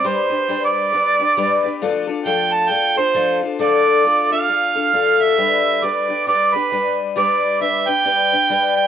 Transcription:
0.04 0.31 G3 medium
0.04 0.31 D4 medium
0.04 0.29 G4 loud
0.04 0.29 B4 medium
0.04 0.62 C5 loud
0.30 0.48 D4 soft
0.30 0.48 G4 medium
0.30 0.48 B4 medium
0.49 0.91 G3 medium
0.49 0.93 D4 loud
0.49 0.93 G4 medium
0.49 0.93 B4 medium
0.65 1.94 D5 loud
0.93 1.19 G3 medium
0.93 1.20 D4 medium
0.93 1.19 G4 medium
0.93 1.18 B4 medium
1.19 1.37 D4 soft
1.19 1.37 G4 medium
1.19 1.37 B4 medium
1.37 1.64 G3 medium
1.37 1.64 D4 loud
1.37 1.64 G4 loud
1.37 1.63 B4 loud
1.64 1.81 D4 soft
1.64 1.82 G4 medium
1.64 1.82 B4 medium
1.82 2.08 F3 medium
1.82 2.09 A3 loud
1.82 2.08 D4 loud
1.82 2.08 F4 loud
1.82 2.06 A4 loud
2.07 2.25 D4 medium
2.07 2.25 F4 medium
2.07 2.26 A4 medium
2.25 2.70 F3 medium
2.25 2.69 A3 medium
2.25 2.70 D4 medium
2.25 2.70 F4 medium
2.25 2.71 A4 loud
2.25 2.54 G5 loud
2.52 2.72 A5 loud
2.70 2.97 A3 medium
2.70 2.97 D4 medium
2.70 2.96 F4 medium
2.70 2.95 A4 medium
2.70 2.97 G5 loud
2.96 3.14 D4 soft
2.96 3.14 F4 medium
2.96 3.14 A4 medium
2.96 3.39 C5 loud
3.14 3.42 F3 medium
3.14 3.42 A3 medium
3.14 3.42 D4 medium
3.14 3.41 F4 loud
3.14 3.40 A4 medium
3.41 3.59 D4 soft
3.41 3.59 F4 medium
3.41 3.59 A4 medium
3.59 4.04 D3 medium
3.59 4.03 A3 medium
3.59 4.04 D4 medium
3.59 4.04 F4 medium
3.59 4.05 A4 medium
3.59 4.28 D5 loud
4.04 4.31 A3 medium
4.04 4.31 D4 medium
4.04 4.31 F4 medium
4.04 4.30 A4 medium
4.31 4.47 D4 soft
4.31 4.48 F4 medium
4.31 4.48 A4 medium
4.31 5.23 F5 loud
4.48 4.75 A3 medium
4.48 4.76 D4 medium
4.48 4.75 F4 medium
4.48 4.74 A4 medium
4.75 4.92 D4 soft
4.75 4.93 F4 soft
4.75 4.93 A4 medium
4.93 5.36 A3 medium
4.93 5.37 D4 medium
4.93 5.37 F4 medium
4.93 5.38 A4 medium
5.21 5.85 E5 loud
5.37 5.81 G3 medium
5.37 5.83 D4 medium
5.37 5.82 G4 medium
5.37 5.82 B4 medium
5.82 6.09 G3 medium
5.82 6.09 D4 medium
5.82 6.09 G4 medium
5.82 6.08 B4 medium
5.82 6.27 D5 medium
6.09 6.26 D4 soft
6.09 6.27 G4 medium
6.09 6.27 B4 medium
6.26 6.54 G3 medium
6.26 6.54 D4 medium
6.26 6.54 G4 medium
6.26 6.53 B4 medium
6.26 6.56 D5 loud
6.54 6.71 D4 soft
6.54 6.72 G4 medium
6.54 6.98 B4 medium
6.54 6.72 B4 medium
6.72 7.15 G3 medium
6.72 7.16 D4 medium
6.72 7.15 G4 medium
6.72 7.16 B4 medium
7.16 7.59 G3 medium
7.16 7.60 D4 medium
7.16 7.60 G4 loud
7.16 7.61 B4 medium
7.16 7.58 D5 loud
7.60 7.87 G3 medium
7.60 7.87 D4 medium
7.60 7.86 G4 medium
7.60 7.86 B4 medium
7.60 7.89 E5 loud
7.87 8.04 D4 soft
7.87 8.05 G4 medium
7.87 8.05 B4 medium
7.87 8.76 G5 loud
8.04 8.32 G3 medium
8.04 8.32 D4 medium
8.04 8.32 G4 medium
8.04 8.31 B4 medium
8.32 8.49 D4 medium
8.32 8.50 G4 medium
8.32 8.50 B4 medium
8.50 8.87 G3 medium
8.50 8.87 D4 medium
8.50 8.87 G4 medium
8.50 8.87 B4 medium
8.76 8.87 G5 loud

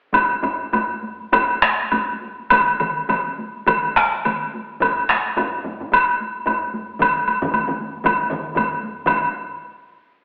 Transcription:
0.13 taiko medium
0.13 taiko low-mid medium
0.13 taiko high medium
0.13 high woodblock soft
0.31 taiko high soft
0.43 taiko low-mid medium
0.43 taiko high soft
0.43 high woodblock soft
0.61 taiko high soft
0.73 taiko low-mid medium
0.73 taiko high medium
0.73 high woodblock soft
0.91 taiko high soft
1.03 taiko high soft
1.21 taiko high soft
1.32 taiko loud
1.32 taiko low-mid medium
1.32 taiko high medium
1.32 high woodblock soft
1.62 taiko rim medium
1.62 taiko high soft
1.81 taiko high soft
1.92 taiko low-mid medium
1.92 taiko high medium
1.92 high woodblock soft
2.10 taiko high soft
2.22 taiko high soft
2.39 taiko high soft
2.50 taiko medium
2.50 taiko mid medium
2.50 taiko high medium
2.50 high woodblock medium
2.69 taiko high soft
2.80 taiko mid medium
2.80 taiko high soft
2.80 high woodblock soft
2.97 taiko high soft
3.09 taiko mid loud
3.09 taiko high medium
3.09 high woodblock soft
3.26 taiko high soft
3.38 taiko high soft
3.56 taiko high soft
3.67 taiko medium
3.67 taiko mid medium
3.67 taiko high medium
3.67 high woodblock soft
3.96 taiko rim medium
3.96 taiko high soft
4.13 taiko high soft
4.25 taiko mid medium
4.25 taiko high medium
4.25 high woodblock soft
4.43 taiko high soft
4.54 taiko high soft
4.71 taiko high soft
4.80 taiko medium
4.80 taiko low-mid medium
4.80 taiko high medium
4.80 high woodblock soft
4.98 taiko high soft
5.09 taiko rim medium
5.09 taiko high soft
5.09 high woodblock soft
5.26 taiko high soft
5.37 taiko low-mid loud
5.37 taiko high medium
5.37 high woodblock soft
5.54 taiko high soft
5.64 taiko low-mid medium
5.64 taiko high soft
5.80 taiko low-mid medium
5.80 taiko high soft
5.92 taiko medium
5.92 taiko high medium
5.92 high woodblock medium
6.20 taiko high soft
6.37 taiko high soft
6.46 taiko low-mid medium
6.46 taiko high medium
6.46 high woodblock soft
6.64 taiko high soft
6.74 taiko high medium
6.90 taiko high soft
6.99 taiko medium
6.99 taiko low-mid medium
6.99 taiko mid medium
6.99 taiko high medium
6.99 high woodblock soft
7.16 taiko high soft
7.28 taiko high medium
7.28 high woodblock soft
7.42 taiko low-mid medium
7.42 taiko mid medium
7.42 taiko high soft
7.53 taiko high medium
7.53 high woodblock soft
7.68 taiko low-mid medium
7.68 taiko mid medium
7.68 taiko high soft
7.80 taiko high soft
7.96 taiko high soft
8.04 taiko medium
8.04 taiko low-mid medium
8.04 taiko mid medium
8.04 taiko high medium
8.04 high woodblock soft
8.22 taiko high soft
8.30 taiko low-mid medium
8.30 taiko mid medium
8.30 taiko high soft
8.48 taiko high soft
8.56 taiko low-mid medium
8.56 taiko mid medium
8.56 taiko high medium
8.56 high woodblock soft
8.73 taiko high soft
8.83 taiko high soft
8.98 taiko high soft
9.06 taiko medium
9.06 taiko low-mid medium
9.06 taiko mid medium
9.06 taiko high medium
9.06 high woodblock medium

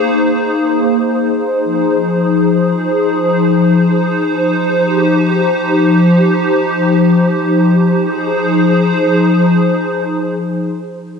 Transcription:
0.00 1.62 A#3 medium
0.00 1.62 D#4 medium
0.00 1.62 G#4 medium
0.00 1.62 C5 medium
1.65 4.82 F3 medium
1.65 8.01 D#4 medium
1.65 4.82 G#4 medium
1.65 8.01 C5 loud
4.85 8.02 F3 medium
4.85 8.02 G4 medium
8.04 11.20 F3 medium
8.04 11.20 D#4 medium
8.04 11.20 G#4 medium
8.04 11.20 C5 medium

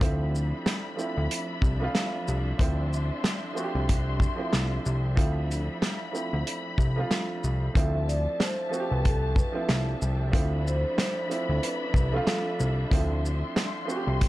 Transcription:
0.00 0.53 D2 loud
0.00 0.96 F3 medium
0.00 7.72 F3 medium
0.00 0.97 A3 medium
0.00 0.02 C4 medium
0.00 0.89 C4 medium
0.00 7.72 D4 medium
0.00 0.04 E4 medium
0.00 0.89 E4 medium
0.00 2.61 F#4 medium
0.00 2.61 G4 medium
0.00 7.72 E5 medium
0.00 2.57 B5 medium
0.00 kick loud
0.00 closed hi-hat medium
0.35 shaker soft
0.66 snare loud
0.66 closed hi-hat medium
0.96 1.69 F3 medium
0.96 1.70 A3 medium
0.96 1.70 C4 medium
0.96 shaker soft
1.00 1.71 E4 medium
1.17 1.28 D2 medium
1.31 closed hi-hat loud
1.62 1.88 C2 medium
1.62 kick medium
1.62 shaker medium
1.80 2.51 F3 medium
1.80 2.51 A3 medium
1.80 2.52 C4 medium
1.84 2.53 F4 loud
1.95 snare loud
1.95 snare medium
1.95 closed hi-hat medium
2.28 2.53 C2 medium
2.28 shaker medium
2.58 3.11 D2 loud
2.58 3.45 F3 medium
2.58 3.46 A3 medium
2.58 3.47 C4 medium
2.58 5.15 C6 medium
2.58 kick loud
2.58 closed hi-hat medium
2.62 3.48 E4 medium
2.93 shaker soft
3.24 snare loud
3.24 closed hi-hat medium
3.53 4.27 F3 medium
3.53 4.27 A3 medium
3.53 4.28 C4 medium
3.53 shaker soft
3.57 3.64 F#4 medium
3.64 4.32 G4 medium
3.75 4.26 C2 medium
3.89 kick medium
3.89 closed hi-hat loud
4.20 kick medium
4.20 shaker medium
4.36 5.08 F3 medium
4.36 5.08 A3 medium
4.36 5.09 C4 medium
4.40 5.10 E4 medium
4.53 4.79 C2 loud
4.53 snare loud
4.53 snare medium
4.53 closed hi-hat medium
4.86 5.19 C2 medium
4.86 shaker medium
5.15 5.69 D2 loud
5.15 6.03 F3 loud
5.15 6.04 A3 medium
5.15 6.05 C4 medium
5.15 7.73 B5 medium
5.15 kick loud
5.15 closed hi-hat medium
5.20 6.05 E4 medium
5.51 closed hi-hat soft
5.51 shaker soft
5.82 snare loud
5.82 closed hi-hat medium
6.12 6.85 F3 medium
6.12 6.86 A3 medium
6.12 6.86 C4 medium
6.12 shaker soft
6.16 6.87 E4 medium
6.33 6.44 D2 medium
6.47 closed hi-hat loud
6.78 7.04 C2 medium
6.78 kick medium
6.78 shaker medium
6.96 7.67 F3 medium
6.96 7.67 A3 medium
6.96 7.68 C4 medium
7.00 7.69 F4 loud
7.11 snare loud
7.11 closed hi-hat medium
7.44 7.70 C2 medium
7.44 shaker medium
7.74 8.27 D2 loud
7.74 8.62 F3 medium
7.74 14.28 F3 medium
7.74 8.62 A3 medium
7.74 8.63 C4 medium
7.74 14.28 D4 medium
7.74 14.28 E5 medium
7.74 10.31 A5 medium
7.74 kick loud
7.74 closed hi-hat medium
7.78 8.64 E4 medium
7.94 8.07 E5 medium
8.08 8.37 D5 medium
8.08 closed hi-hat soft
8.08 shaker soft
8.40 8.88 C5 medium
8.40 snare loud
8.40 closed hi-hat medium
8.69 9.43 F3 medium
8.69 9.43 A3 medium
8.69 9.44 C4 medium
8.73 8.80 F#4 medium
8.73 shaker medium
8.80 9.48 G4 loud
8.91 9.43 C2 medium
8.91 9.04 B4 medium
9.05 9.34 A4 medium
9.05 kick medium
9.05 closed hi-hat loud
9.36 9.65 B4 medium
9.36 kick loud
9.36 shaker medium
9.52 10.24 F3 medium
9.52 10.25 A3 medium
9.52 10.25 C4 medium
9.56 10.26 E4 loud
9.69 9.95 C2 loud
9.69 snare loud
9.69 closed hi-hat medium
10.02 10.35 C2 loud
10.02 shaker medium
10.32 10.85 D2 loud
10.32 11.19 F3 medium
10.32 11.20 A3 medium
10.32 11.21 C4 medium
10.32 12.89 B5 medium
10.32 kick loud
10.32 closed hi-hat medium
10.36 11.22 E4 medium
10.67 11.59 C5 medium
10.67 shaker soft
10.98 snare loud
10.98 closed hi-hat loud
11.28 12.01 F3 medium
11.28 12.02 A3 medium
11.28 12.03 C4 medium
11.28 closed hi-hat soft
11.28 shaker medium
11.32 12.03 E4 loud
11.49 11.60 D2 medium
11.62 12.10 B4 medium
11.62 closed hi-hat loud
11.94 12.20 C2 medium
11.94 kick medium
11.94 shaker medium
12.12 12.83 F3 medium
12.12 12.84 A3 medium
12.12 12.84 C4 medium
12.12 12.87 A4 medium
12.16 12.85 F4 loud
12.27 snare loud
12.27 snare medium
12.27 closed hi-hat medium
12.60 12.86 C2 medium
12.60 shaker medium
12.90 13.43 D2 loud
12.90 13.78 F3 medium
12.90 13.78 A3 medium
12.90 13.79 C4 medium
12.90 14.28 C6 loud
12.90 kick loud
12.90 closed hi-hat medium
12.94 13.80 E4 medium
13.25 shaker soft
13.56 snare loud
13.56 closed hi-hat loud
13.85 14.28 F3 medium
13.85 14.28 A3 medium
13.85 14.28 C4 medium
13.89 13.96 F#4 medium
13.89 shaker medium
13.96 14.28 G4 loud
14.07 14.28 C2 loud
14.21 kick loud
14.21 closed hi-hat loud

